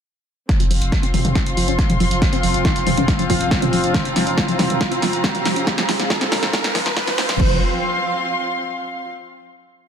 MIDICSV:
0, 0, Header, 1, 7, 480
1, 0, Start_track
1, 0, Tempo, 431655
1, 547, Time_signature, 4, 2, 24, 8
1, 10988, End_track
2, 0, Start_track
2, 0, Title_t, "String section"
2, 0, Program_c, 0, 48
2, 545, Note_on_c, 0, 60, 94
2, 657, Note_on_c, 0, 65, 83
2, 889, Note_on_c, 0, 84, 75
2, 908, Note_on_c, 0, 77, 77
2, 4456, Note_on_c, 0, 82, 77
2, 4599, Note_off_c, 0, 84, 0
2, 8213, Note_off_c, 0, 60, 0
2, 8226, Note_off_c, 0, 77, 0
2, 8227, Note_off_c, 0, 65, 0
2, 8227, Note_off_c, 0, 82, 0
2, 8227, Note_on_c, 0, 60, 85
2, 8300, Note_on_c, 0, 65, 81
2, 8373, Note_on_c, 0, 77, 79
2, 8441, Note_on_c, 0, 84, 82
2, 10101, Note_off_c, 0, 84, 0
2, 10102, Note_off_c, 0, 60, 0
2, 10103, Note_off_c, 0, 65, 0
2, 10103, Note_off_c, 0, 77, 0
2, 10988, End_track
3, 0, Start_track
3, 0, Title_t, "Synth drone"
3, 0, Program_c, 1, 95
3, 546, Note_on_c, 1, 53, 76
3, 546, Note_on_c, 1, 65, 74
3, 8275, Note_off_c, 1, 53, 0
3, 8275, Note_off_c, 1, 65, 0
3, 10988, End_track
4, 0, Start_track
4, 0, Title_t, "Synth arpeggio sound"
4, 0, Program_c, 2, 84
4, 666, Note_on_c, 2, 53, 99
4, 722, Note_off_c, 2, 53, 0
4, 785, Note_on_c, 2, 53, 96
4, 842, Note_off_c, 2, 53, 0
4, 1147, Note_on_c, 2, 60, 104
4, 1180, Note_off_c, 2, 60, 0
4, 1266, Note_on_c, 2, 53, 76
4, 1322, Note_off_c, 2, 53, 0
4, 1506, Note_on_c, 2, 51, 107
4, 1589, Note_off_c, 2, 51, 0
4, 1746, Note_on_c, 2, 53, 99
4, 1830, Note_off_c, 2, 53, 0
4, 1866, Note_on_c, 2, 61, 75
4, 1949, Note_off_c, 2, 61, 0
4, 2107, Note_on_c, 2, 53, 96
4, 2162, Note_off_c, 2, 53, 0
4, 2226, Note_on_c, 2, 53, 106
4, 2282, Note_off_c, 2, 53, 0
4, 2587, Note_on_c, 2, 60, 102
4, 2620, Note_off_c, 2, 60, 0
4, 2706, Note_on_c, 2, 53, 76
4, 2762, Note_off_c, 2, 53, 0
4, 2946, Note_on_c, 2, 51, 103
4, 3030, Note_off_c, 2, 51, 0
4, 3186, Note_on_c, 2, 53, 101
4, 3270, Note_off_c, 2, 53, 0
4, 3307, Note_on_c, 2, 61, 75
4, 3389, Note_off_c, 2, 61, 0
4, 3547, Note_on_c, 2, 53, 99
4, 3602, Note_off_c, 2, 53, 0
4, 3666, Note_on_c, 2, 53, 102
4, 3722, Note_off_c, 2, 53, 0
4, 4027, Note_on_c, 2, 60, 100
4, 4060, Note_off_c, 2, 60, 0
4, 4146, Note_on_c, 2, 53, 82
4, 4202, Note_off_c, 2, 53, 0
4, 4386, Note_on_c, 2, 51, 99
4, 4469, Note_off_c, 2, 51, 0
4, 4625, Note_on_c, 2, 53, 105
4, 4709, Note_off_c, 2, 53, 0
4, 4747, Note_on_c, 2, 61, 73
4, 4829, Note_off_c, 2, 61, 0
4, 4987, Note_on_c, 2, 53, 98
4, 5042, Note_off_c, 2, 53, 0
4, 5106, Note_on_c, 2, 53, 106
4, 5162, Note_off_c, 2, 53, 0
4, 5466, Note_on_c, 2, 60, 101
4, 5500, Note_off_c, 2, 60, 0
4, 5585, Note_on_c, 2, 53, 76
4, 5641, Note_off_c, 2, 53, 0
4, 5825, Note_on_c, 2, 51, 100
4, 5909, Note_off_c, 2, 51, 0
4, 6064, Note_on_c, 2, 53, 110
4, 6149, Note_off_c, 2, 53, 0
4, 6186, Note_on_c, 2, 61, 77
4, 6269, Note_off_c, 2, 61, 0
4, 6426, Note_on_c, 2, 53, 102
4, 6482, Note_off_c, 2, 53, 0
4, 6545, Note_on_c, 2, 53, 101
4, 6601, Note_off_c, 2, 53, 0
4, 6906, Note_on_c, 2, 60, 103
4, 6940, Note_off_c, 2, 60, 0
4, 7026, Note_on_c, 2, 53, 75
4, 7082, Note_off_c, 2, 53, 0
4, 7265, Note_on_c, 2, 51, 105
4, 7349, Note_off_c, 2, 51, 0
4, 7505, Note_on_c, 2, 53, 102
4, 7589, Note_off_c, 2, 53, 0
4, 7627, Note_on_c, 2, 53, 100
4, 7682, Note_off_c, 2, 53, 0
4, 7867, Note_on_c, 2, 53, 102
4, 7922, Note_off_c, 2, 53, 0
4, 7986, Note_on_c, 2, 60, 105
4, 8042, Note_off_c, 2, 60, 0
4, 8107, Note_on_c, 2, 53, 75
4, 8189, Note_off_c, 2, 53, 0
4, 8226, Note_on_c, 2, 53, 93
4, 8450, Note_off_c, 2, 53, 0
4, 10988, End_track
5, 0, Start_track
5, 0, Title_t, "Sub bass"
5, 0, Program_c, 3, 38
5, 786, Note_on_c, 3, 29, 106
5, 900, Note_off_c, 3, 29, 0
5, 907, Note_on_c, 3, 29, 81
5, 1024, Note_off_c, 3, 29, 0
5, 1266, Note_on_c, 3, 29, 100
5, 1381, Note_off_c, 3, 29, 0
5, 1387, Note_on_c, 3, 29, 77
5, 1504, Note_off_c, 3, 29, 0
5, 1746, Note_on_c, 3, 29, 96
5, 1861, Note_off_c, 3, 29, 0
5, 1868, Note_on_c, 3, 29, 84
5, 1984, Note_off_c, 3, 29, 0
5, 2227, Note_on_c, 3, 29, 99
5, 2341, Note_off_c, 3, 29, 0
5, 2347, Note_on_c, 3, 29, 79
5, 2464, Note_off_c, 3, 29, 0
5, 2706, Note_on_c, 3, 29, 104
5, 2820, Note_off_c, 3, 29, 0
5, 2827, Note_on_c, 3, 29, 84
5, 2944, Note_off_c, 3, 29, 0
5, 3186, Note_on_c, 3, 29, 99
5, 3300, Note_off_c, 3, 29, 0
5, 3307, Note_on_c, 3, 29, 78
5, 3424, Note_off_c, 3, 29, 0
5, 3666, Note_on_c, 3, 29, 96
5, 3780, Note_off_c, 3, 29, 0
5, 3787, Note_on_c, 3, 29, 82
5, 3904, Note_off_c, 3, 29, 0
5, 4146, Note_on_c, 3, 29, 95
5, 4260, Note_off_c, 3, 29, 0
5, 4267, Note_on_c, 3, 29, 82
5, 4384, Note_off_c, 3, 29, 0
5, 4626, Note_on_c, 3, 29, 102
5, 4741, Note_off_c, 3, 29, 0
5, 4747, Note_on_c, 3, 29, 84
5, 4864, Note_off_c, 3, 29, 0
5, 5106, Note_on_c, 3, 29, 98
5, 5220, Note_off_c, 3, 29, 0
5, 5226, Note_on_c, 3, 29, 82
5, 5344, Note_off_c, 3, 29, 0
5, 5586, Note_on_c, 3, 29, 96
5, 5700, Note_off_c, 3, 29, 0
5, 5707, Note_on_c, 3, 29, 86
5, 5824, Note_off_c, 3, 29, 0
5, 6066, Note_on_c, 3, 29, 105
5, 6180, Note_off_c, 3, 29, 0
5, 6187, Note_on_c, 3, 29, 84
5, 6304, Note_off_c, 3, 29, 0
5, 6545, Note_on_c, 3, 29, 106
5, 6660, Note_off_c, 3, 29, 0
5, 6666, Note_on_c, 3, 29, 82
5, 6784, Note_off_c, 3, 29, 0
5, 7025, Note_on_c, 3, 29, 95
5, 7140, Note_off_c, 3, 29, 0
5, 7147, Note_on_c, 3, 29, 80
5, 7264, Note_off_c, 3, 29, 0
5, 7506, Note_on_c, 3, 29, 96
5, 7620, Note_off_c, 3, 29, 0
5, 7627, Note_on_c, 3, 29, 82
5, 7744, Note_off_c, 3, 29, 0
5, 7986, Note_on_c, 3, 29, 99
5, 8100, Note_off_c, 3, 29, 0
5, 8107, Note_on_c, 3, 29, 83
5, 8219, Note_off_c, 3, 29, 0
5, 8226, Note_on_c, 3, 29, 108
5, 8450, Note_off_c, 3, 29, 0
5, 10988, End_track
6, 0, Start_track
6, 0, Title_t, "Riser"
6, 0, Program_c, 4, 103
6, 546, Note_on_c, 4, 60, 83
6, 8226, Note_off_c, 4, 60, 0
6, 10988, End_track
7, 0, Start_track
7, 0, Title_t, "Drums"
7, 546, Note_on_c, 9, 36, 119
7, 546, Note_on_c, 9, 38, 50
7, 546, Note_on_c, 9, 42, 70
7, 657, Note_off_c, 9, 36, 0
7, 657, Note_off_c, 9, 38, 0
7, 657, Note_off_c, 9, 42, 0
7, 667, Note_on_c, 9, 42, 68
7, 778, Note_off_c, 9, 42, 0
7, 786, Note_on_c, 9, 46, 104
7, 897, Note_off_c, 9, 46, 0
7, 908, Note_on_c, 9, 42, 67
7, 1019, Note_off_c, 9, 42, 0
7, 1026, Note_on_c, 9, 36, 121
7, 1027, Note_on_c, 9, 38, 46
7, 1027, Note_on_c, 9, 42, 66
7, 1137, Note_off_c, 9, 36, 0
7, 1138, Note_off_c, 9, 38, 0
7, 1138, Note_off_c, 9, 42, 0
7, 1148, Note_on_c, 9, 42, 67
7, 1259, Note_off_c, 9, 42, 0
7, 1267, Note_on_c, 9, 46, 95
7, 1267, Note_on_c, 9, 47, 80
7, 1378, Note_off_c, 9, 46, 0
7, 1378, Note_off_c, 9, 47, 0
7, 1388, Note_on_c, 9, 42, 68
7, 1388, Note_on_c, 9, 47, 89
7, 1499, Note_off_c, 9, 42, 0
7, 1499, Note_off_c, 9, 47, 0
7, 1506, Note_on_c, 9, 36, 119
7, 1507, Note_on_c, 9, 38, 51
7, 1507, Note_on_c, 9, 42, 68
7, 1617, Note_off_c, 9, 36, 0
7, 1618, Note_off_c, 9, 38, 0
7, 1618, Note_off_c, 9, 42, 0
7, 1628, Note_on_c, 9, 42, 66
7, 1739, Note_off_c, 9, 42, 0
7, 1748, Note_on_c, 9, 46, 101
7, 1859, Note_off_c, 9, 46, 0
7, 1868, Note_on_c, 9, 42, 68
7, 1979, Note_off_c, 9, 42, 0
7, 1986, Note_on_c, 9, 36, 117
7, 1988, Note_on_c, 9, 38, 56
7, 1988, Note_on_c, 9, 42, 67
7, 2097, Note_off_c, 9, 36, 0
7, 2099, Note_off_c, 9, 38, 0
7, 2099, Note_off_c, 9, 42, 0
7, 2109, Note_on_c, 9, 42, 72
7, 2109, Note_on_c, 9, 47, 82
7, 2220, Note_off_c, 9, 42, 0
7, 2220, Note_off_c, 9, 47, 0
7, 2227, Note_on_c, 9, 46, 90
7, 2338, Note_off_c, 9, 46, 0
7, 2348, Note_on_c, 9, 42, 69
7, 2459, Note_off_c, 9, 42, 0
7, 2466, Note_on_c, 9, 36, 124
7, 2467, Note_on_c, 9, 38, 60
7, 2467, Note_on_c, 9, 42, 70
7, 2577, Note_off_c, 9, 36, 0
7, 2578, Note_off_c, 9, 38, 0
7, 2578, Note_off_c, 9, 42, 0
7, 2588, Note_on_c, 9, 42, 71
7, 2699, Note_off_c, 9, 42, 0
7, 2706, Note_on_c, 9, 46, 108
7, 2818, Note_off_c, 9, 46, 0
7, 2828, Note_on_c, 9, 42, 72
7, 2939, Note_off_c, 9, 42, 0
7, 2946, Note_on_c, 9, 36, 121
7, 2946, Note_on_c, 9, 38, 63
7, 2946, Note_on_c, 9, 42, 66
7, 3057, Note_off_c, 9, 36, 0
7, 3057, Note_off_c, 9, 38, 0
7, 3057, Note_off_c, 9, 42, 0
7, 3067, Note_on_c, 9, 42, 69
7, 3179, Note_off_c, 9, 42, 0
7, 3187, Note_on_c, 9, 46, 97
7, 3187, Note_on_c, 9, 47, 88
7, 3298, Note_off_c, 9, 46, 0
7, 3298, Note_off_c, 9, 47, 0
7, 3308, Note_on_c, 9, 42, 69
7, 3308, Note_on_c, 9, 47, 91
7, 3419, Note_off_c, 9, 42, 0
7, 3419, Note_off_c, 9, 47, 0
7, 3426, Note_on_c, 9, 36, 127
7, 3427, Note_on_c, 9, 38, 67
7, 3427, Note_on_c, 9, 42, 69
7, 3537, Note_off_c, 9, 36, 0
7, 3538, Note_off_c, 9, 38, 0
7, 3538, Note_off_c, 9, 42, 0
7, 3548, Note_on_c, 9, 42, 68
7, 3659, Note_off_c, 9, 42, 0
7, 3666, Note_on_c, 9, 36, 66
7, 3666, Note_on_c, 9, 46, 107
7, 3777, Note_off_c, 9, 36, 0
7, 3778, Note_off_c, 9, 46, 0
7, 3788, Note_on_c, 9, 42, 68
7, 3899, Note_off_c, 9, 42, 0
7, 3906, Note_on_c, 9, 36, 121
7, 3906, Note_on_c, 9, 38, 72
7, 3906, Note_on_c, 9, 42, 71
7, 4017, Note_off_c, 9, 36, 0
7, 4018, Note_off_c, 9, 38, 0
7, 4018, Note_off_c, 9, 42, 0
7, 4028, Note_on_c, 9, 42, 70
7, 4028, Note_on_c, 9, 47, 84
7, 4139, Note_off_c, 9, 42, 0
7, 4139, Note_off_c, 9, 47, 0
7, 4147, Note_on_c, 9, 46, 95
7, 4258, Note_off_c, 9, 46, 0
7, 4268, Note_on_c, 9, 42, 68
7, 4379, Note_off_c, 9, 42, 0
7, 4386, Note_on_c, 9, 36, 126
7, 4387, Note_on_c, 9, 38, 73
7, 4387, Note_on_c, 9, 42, 66
7, 4497, Note_off_c, 9, 36, 0
7, 4498, Note_off_c, 9, 38, 0
7, 4498, Note_off_c, 9, 42, 0
7, 4507, Note_on_c, 9, 42, 67
7, 4618, Note_off_c, 9, 42, 0
7, 4626, Note_on_c, 9, 38, 79
7, 4626, Note_on_c, 9, 46, 114
7, 4737, Note_off_c, 9, 38, 0
7, 4737, Note_off_c, 9, 46, 0
7, 4746, Note_on_c, 9, 42, 68
7, 4857, Note_off_c, 9, 42, 0
7, 4866, Note_on_c, 9, 36, 122
7, 4866, Note_on_c, 9, 38, 78
7, 4866, Note_on_c, 9, 42, 65
7, 4977, Note_off_c, 9, 36, 0
7, 4977, Note_off_c, 9, 38, 0
7, 4977, Note_off_c, 9, 42, 0
7, 4987, Note_on_c, 9, 42, 65
7, 5098, Note_off_c, 9, 42, 0
7, 5106, Note_on_c, 9, 38, 83
7, 5106, Note_on_c, 9, 46, 96
7, 5106, Note_on_c, 9, 47, 88
7, 5217, Note_off_c, 9, 38, 0
7, 5217, Note_off_c, 9, 46, 0
7, 5217, Note_off_c, 9, 47, 0
7, 5227, Note_on_c, 9, 42, 67
7, 5227, Note_on_c, 9, 47, 98
7, 5338, Note_off_c, 9, 42, 0
7, 5338, Note_off_c, 9, 47, 0
7, 5346, Note_on_c, 9, 36, 127
7, 5346, Note_on_c, 9, 38, 83
7, 5346, Note_on_c, 9, 42, 67
7, 5457, Note_off_c, 9, 36, 0
7, 5457, Note_off_c, 9, 38, 0
7, 5457, Note_off_c, 9, 42, 0
7, 5467, Note_on_c, 9, 42, 68
7, 5578, Note_off_c, 9, 42, 0
7, 5586, Note_on_c, 9, 38, 84
7, 5586, Note_on_c, 9, 46, 109
7, 5697, Note_off_c, 9, 38, 0
7, 5697, Note_off_c, 9, 46, 0
7, 5707, Note_on_c, 9, 42, 70
7, 5818, Note_off_c, 9, 42, 0
7, 5826, Note_on_c, 9, 36, 126
7, 5826, Note_on_c, 9, 38, 89
7, 5826, Note_on_c, 9, 42, 71
7, 5937, Note_off_c, 9, 36, 0
7, 5938, Note_off_c, 9, 38, 0
7, 5938, Note_off_c, 9, 42, 0
7, 5947, Note_on_c, 9, 42, 67
7, 5947, Note_on_c, 9, 47, 86
7, 6058, Note_off_c, 9, 42, 0
7, 6058, Note_off_c, 9, 47, 0
7, 6066, Note_on_c, 9, 38, 91
7, 6066, Note_on_c, 9, 46, 104
7, 6177, Note_off_c, 9, 38, 0
7, 6177, Note_off_c, 9, 46, 0
7, 6187, Note_on_c, 9, 42, 67
7, 6298, Note_off_c, 9, 42, 0
7, 6306, Note_on_c, 9, 36, 127
7, 6306, Note_on_c, 9, 38, 91
7, 6306, Note_on_c, 9, 42, 64
7, 6417, Note_off_c, 9, 36, 0
7, 6417, Note_off_c, 9, 38, 0
7, 6417, Note_off_c, 9, 42, 0
7, 6427, Note_on_c, 9, 38, 82
7, 6427, Note_on_c, 9, 42, 63
7, 6538, Note_off_c, 9, 38, 0
7, 6538, Note_off_c, 9, 42, 0
7, 6546, Note_on_c, 9, 38, 97
7, 6546, Note_on_c, 9, 46, 112
7, 6657, Note_off_c, 9, 38, 0
7, 6657, Note_off_c, 9, 46, 0
7, 6667, Note_on_c, 9, 38, 87
7, 6667, Note_on_c, 9, 42, 68
7, 6778, Note_off_c, 9, 38, 0
7, 6778, Note_off_c, 9, 42, 0
7, 6786, Note_on_c, 9, 36, 127
7, 6786, Note_on_c, 9, 38, 97
7, 6786, Note_on_c, 9, 42, 64
7, 6897, Note_off_c, 9, 36, 0
7, 6897, Note_off_c, 9, 38, 0
7, 6897, Note_off_c, 9, 42, 0
7, 6907, Note_on_c, 9, 38, 86
7, 6907, Note_on_c, 9, 42, 64
7, 7018, Note_off_c, 9, 38, 0
7, 7018, Note_off_c, 9, 42, 0
7, 7026, Note_on_c, 9, 38, 105
7, 7026, Note_on_c, 9, 46, 101
7, 7026, Note_on_c, 9, 47, 92
7, 7137, Note_off_c, 9, 38, 0
7, 7137, Note_off_c, 9, 46, 0
7, 7137, Note_off_c, 9, 47, 0
7, 7147, Note_on_c, 9, 38, 85
7, 7147, Note_on_c, 9, 42, 63
7, 7147, Note_on_c, 9, 47, 95
7, 7258, Note_off_c, 9, 38, 0
7, 7258, Note_off_c, 9, 42, 0
7, 7258, Note_off_c, 9, 47, 0
7, 7266, Note_on_c, 9, 36, 127
7, 7266, Note_on_c, 9, 38, 101
7, 7266, Note_on_c, 9, 42, 62
7, 7377, Note_off_c, 9, 36, 0
7, 7377, Note_off_c, 9, 38, 0
7, 7377, Note_off_c, 9, 42, 0
7, 7387, Note_on_c, 9, 38, 93
7, 7387, Note_on_c, 9, 42, 67
7, 7498, Note_off_c, 9, 38, 0
7, 7498, Note_off_c, 9, 42, 0
7, 7505, Note_on_c, 9, 38, 101
7, 7505, Note_on_c, 9, 46, 113
7, 7506, Note_on_c, 9, 36, 68
7, 7617, Note_off_c, 9, 36, 0
7, 7617, Note_off_c, 9, 38, 0
7, 7617, Note_off_c, 9, 46, 0
7, 7627, Note_on_c, 9, 38, 95
7, 7627, Note_on_c, 9, 42, 67
7, 7738, Note_off_c, 9, 38, 0
7, 7738, Note_off_c, 9, 42, 0
7, 7746, Note_on_c, 9, 36, 126
7, 7746, Note_on_c, 9, 38, 109
7, 7746, Note_on_c, 9, 42, 66
7, 7857, Note_off_c, 9, 36, 0
7, 7857, Note_off_c, 9, 38, 0
7, 7857, Note_off_c, 9, 42, 0
7, 7867, Note_on_c, 9, 38, 95
7, 7867, Note_on_c, 9, 42, 69
7, 7867, Note_on_c, 9, 47, 91
7, 7978, Note_off_c, 9, 38, 0
7, 7978, Note_off_c, 9, 42, 0
7, 7978, Note_off_c, 9, 47, 0
7, 7985, Note_on_c, 9, 38, 114
7, 7985, Note_on_c, 9, 46, 99
7, 8096, Note_off_c, 9, 38, 0
7, 8096, Note_off_c, 9, 46, 0
7, 8106, Note_on_c, 9, 38, 99
7, 8106, Note_on_c, 9, 42, 67
7, 8218, Note_off_c, 9, 38, 0
7, 8218, Note_off_c, 9, 42, 0
7, 8225, Note_on_c, 9, 49, 88
7, 8226, Note_on_c, 9, 36, 115
7, 8336, Note_off_c, 9, 49, 0
7, 8337, Note_off_c, 9, 36, 0
7, 10988, End_track
0, 0, End_of_file